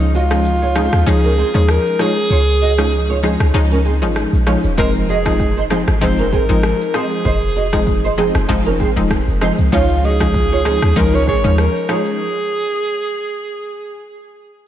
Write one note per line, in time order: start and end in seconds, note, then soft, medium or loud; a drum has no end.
0.00 0.89 C#2 loud
0.00 0.27 F3 medium
0.00 0.27 G#3 medium
0.00 0.27 C#4 medium
0.00 0.13 D#4 medium
0.00 0.27 D#4 loud
0.14 1.10 F4 medium
0.14 0.24 F#4 medium
0.14 0.23 D#5 medium
0.14 shaker soft
0.30 0.49 F3 medium
0.30 0.49 G#3 medium
0.30 0.49 C#4 medium
0.30 0.49 D#4 medium
0.30 cross-stick medium
0.30 shaker soft
0.45 shaker medium
0.62 0.70 F4 medium
0.62 0.69 C#5 medium
0.62 shaker soft
0.75 0.96 F3 medium
0.75 0.96 G#3 medium
0.75 0.85 C4 medium
0.75 0.96 C#4 medium
0.75 0.96 D#4 medium
0.75 0.85 G#4 medium
0.75 cross-stick medium
0.75 shaker soft
0.93 1.03 D#2 medium
0.93 cross-stick loud
0.93 shaker medium
1.06 1.43 C#2 medium
1.06 1.27 F3 loud
1.06 1.27 G#3 medium
1.06 1.27 C#4 medium
1.06 1.27 D#4 loud
1.06 1.72 G#4 loud
1.06 shaker medium
1.23 1.32 C#4 medium
1.23 1.31 A#4 medium
1.23 shaker soft
1.37 1.47 C4 medium
1.37 1.47 G#4 medium
1.37 shaker soft
1.54 1.78 D#2 medium
1.54 1.96 F3 medium
1.54 1.96 G#3 medium
1.54 1.96 C#4 medium
1.54 1.96 D#4 medium
1.54 shaker medium
1.68 2.02 A#4 loud
1.68 cross-stick loud
1.68 shaker medium
1.86 shaker medium
1.99 2.28 F3 medium
1.99 2.28 G#3 medium
1.99 2.28 C#4 medium
1.99 2.28 D#4 medium
1.99 2.09 F4 medium
1.99 3.24 G#4 loud
1.99 2.09 C#5 medium
1.99 cross-stick medium
1.99 shaker medium
2.16 shaker soft
2.30 3.36 C#2 loud
2.30 2.40 F4 medium
2.30 2.40 C#5 medium
2.30 shaker medium
2.47 shaker soft
2.62 2.71 F#4 medium
2.62 2.71 D#5 medium
2.62 shaker soft
2.78 2.96 F3 medium
2.78 2.96 G#3 medium
2.78 2.96 C#4 medium
2.78 2.96 D#4 medium
2.78 cross-stick medium
2.78 shaker soft
2.92 shaker medium
3.10 3.17 F4 medium
3.10 3.17 C#5 medium
3.10 shaker soft
3.23 3.43 F3 medium
3.23 3.43 G#3 medium
3.23 3.33 C4 medium
3.23 3.43 C#4 medium
3.23 3.44 D#4 medium
3.23 3.32 G#4 medium
3.23 shaker soft
3.40 3.51 C#2 medium
3.40 cross-stick loud
3.40 shaker soft
3.54 4.04 C#2 loud
3.54 3.74 F3 loud
3.54 3.74 G#3 medium
3.54 3.74 C#4 medium
3.54 3.75 D#4 loud
3.54 shaker medium
3.71 3.79 C#4 medium
3.71 3.79 A#4 medium
3.71 shaker soft
3.85 3.95 C4 medium
3.85 3.94 G#4 medium
3.85 shaker soft
4.02 4.26 G#1 medium
4.02 4.43 F3 medium
4.02 4.44 G#3 medium
4.02 4.44 C#4 medium
4.02 4.44 D#4 medium
4.02 shaker medium
4.16 cross-stick medium
4.16 shaker medium
4.33 4.57 A#1 loud
4.33 shaker medium
4.47 4.75 F3 medium
4.47 4.76 G#3 medium
4.47 4.76 C#4 medium
4.47 4.76 D#4 medium
4.47 4.57 F4 medium
4.47 4.56 C#5 medium
4.47 cross-stick medium
4.47 shaker medium
4.63 4.79 D#1 medium
4.63 shaker soft
4.78 5.84 F1 loud
4.78 5.22 F3 medium
4.78 5.22 G#3 medium
4.78 5.22 C4 medium
4.78 5.22 D#4 loud
4.78 4.88 D#4 medium
4.78 4.93 A#4 loud
4.78 4.87 C5 medium
4.78 kick loud
4.78 shaker medium
4.94 shaker soft
5.09 5.18 F#4 medium
5.09 5.67 G#4 loud
5.09 5.18 D#5 medium
5.09 shaker soft
5.25 5.43 F3 medium
5.25 5.44 G#3 medium
5.25 5.44 C4 medium
5.25 5.44 D#4 medium
5.25 kick medium
5.25 cross-stick medium
5.25 shaker soft
5.40 kick loud
5.40 shaker medium
5.57 5.65 D#4 medium
5.57 5.64 C5 medium
5.57 shaker soft
5.70 5.91 F3 medium
5.70 5.91 G#3 medium
5.70 5.91 C4 medium
5.70 5.80 C4 medium
5.70 5.91 D#4 medium
5.70 5.80 G#4 medium
5.70 cross-stick medium
5.70 shaker soft
5.88 6.03 G#1 medium
5.88 cross-stick medium
5.88 shaker soft
6.01 6.38 F1 loud
6.01 6.22 F3 loud
6.01 6.22 G#3 medium
6.01 6.22 C4 medium
6.01 6.22 D#4 loud
6.01 6.35 C5 loud
6.01 kick medium
6.01 shaker medium
6.18 6.27 C#4 medium
6.18 6.26 A#4 medium
6.18 shaker medium
6.32 6.42 C4 medium
6.32 6.42 G#4 medium
6.32 6.97 A#4 loud
6.32 kick medium
6.32 shaker soft
6.49 6.73 G#1 medium
6.49 6.91 F3 medium
6.49 6.91 G#3 medium
6.49 6.91 C4 medium
6.49 6.91 D#4 medium
6.49 shaker medium
6.63 cross-stick loud
6.63 shaker medium
6.81 shaker medium
6.94 7.23 F3 medium
6.94 7.23 G#3 medium
6.94 7.23 C4 medium
6.94 7.23 D#4 medium
6.94 7.04 D#4 medium
6.94 8.19 G#4 medium
6.94 7.03 C5 medium
6.94 cross-stick medium
6.94 shaker medium
7.11 shaker soft
7.25 8.31 F1 loud
7.25 7.35 D#4 medium
7.25 7.34 C5 medium
7.25 kick loud
7.25 shaker medium
7.41 shaker soft
7.56 7.66 F#4 medium
7.56 7.65 D#5 medium
7.56 shaker soft
7.73 7.91 F3 medium
7.73 7.91 G#3 medium
7.73 7.91 C4 medium
7.73 7.91 D#4 medium
7.73 kick medium
7.73 cross-stick medium
7.73 shaker soft
7.87 kick loud
7.87 shaker medium
8.04 8.12 D#4 medium
8.04 8.11 C5 medium
8.04 shaker soft
8.18 8.38 F3 medium
8.18 8.38 G#3 medium
8.18 8.38 C4 medium
8.18 8.28 C4 medium
8.18 8.38 D#4 medium
8.18 8.27 G#4 medium
8.18 shaker soft
8.35 8.46 F1 medium
8.35 cross-stick loud
8.35 shaker soft
8.49 8.85 F1 medium
8.49 8.69 F3 loud
8.49 8.69 G#3 medium
8.49 8.69 C4 medium
8.49 8.69 D#4 loud
8.49 kick medium
8.49 shaker medium
8.66 8.74 C#4 medium
8.66 8.73 A#4 medium
8.66 shaker soft
8.79 8.89 C4 medium
8.79 8.89 G#4 medium
8.79 kick medium
8.79 shaker soft
8.96 9.20 D#1 medium
8.96 9.38 F3 medium
8.96 9.38 G#3 medium
8.96 9.38 C4 medium
8.96 9.38 D#4 medium
8.96 shaker medium
9.11 kick medium
9.11 cross-stick medium
9.11 shaker medium
9.28 9.51 F1 medium
9.28 shaker medium
9.41 9.70 F3 medium
9.41 9.70 G#3 medium
9.41 9.70 C4 medium
9.41 9.71 D#4 medium
9.41 9.51 D#4 medium
9.41 9.51 C5 medium
9.41 cross-stick medium
9.41 shaker soft
9.58 9.69 C2 medium
9.58 shaker soft
9.72 10.78 C#2 loud
9.72 10.16 F3 medium
9.72 10.16 G#3 medium
9.72 10.17 C#4 medium
9.72 10.17 D#4 loud
9.72 9.82 F4 medium
9.72 10.06 F4 loud
9.72 9.82 C#5 medium
9.72 kick loud
9.72 shaker medium
9.89 shaker soft
10.04 10.13 F#4 medium
10.04 10.99 G#4 loud
10.04 10.13 D#5 medium
10.04 shaker soft
10.20 10.38 F3 medium
10.20 10.38 G#3 medium
10.20 10.38 C#4 medium
10.20 10.38 D#4 medium
10.20 kick medium
10.20 cross-stick medium
10.20 shaker soft
10.34 kick loud
10.34 shaker medium
10.52 10.60 F4 medium
10.52 10.59 C#5 medium
10.52 shaker soft
10.65 10.85 F3 medium
10.65 10.86 G#3 medium
10.65 10.75 C4 medium
10.65 10.86 C#4 medium
10.65 10.86 D#4 medium
10.65 10.74 G#4 medium
10.65 cross-stick medium
10.65 shaker soft
10.82 10.93 D#2 medium
10.82 cross-stick loud
10.82 shaker medium
10.96 11.33 C#2 medium
10.96 11.16 F3 loud
10.96 11.16 G#3 medium
10.96 11.17 C#4 medium
10.96 11.17 D#4 loud
10.96 11.16 A#4 loud
10.96 kick medium
10.96 shaker medium
11.13 11.21 C#4 medium
11.13 11.21 A#4 medium
11.13 11.28 C#5 loud
11.13 shaker medium
11.27 11.37 C4 medium
11.27 11.36 G#4 medium
11.27 11.61 C#5 loud
11.27 kick medium
11.27 shaker soft
11.44 11.68 D#2 medium
11.44 11.86 F3 medium
11.44 11.86 G#3 medium
11.44 11.86 C#4 medium
11.44 11.86 D#4 medium
11.44 shaker medium
11.58 11.92 A#4 loud
11.58 cross-stick medium
11.58 shaker medium
11.76 shaker medium
11.89 12.18 F3 medium
11.89 12.18 G#3 medium
11.89 12.18 C#4 medium
11.89 12.18 D#4 medium
11.89 11.99 F4 medium
11.89 14.06 G#4 loud
11.89 11.98 C#5 medium
11.89 cross-stick medium
11.89 shaker medium
12.06 shaker soft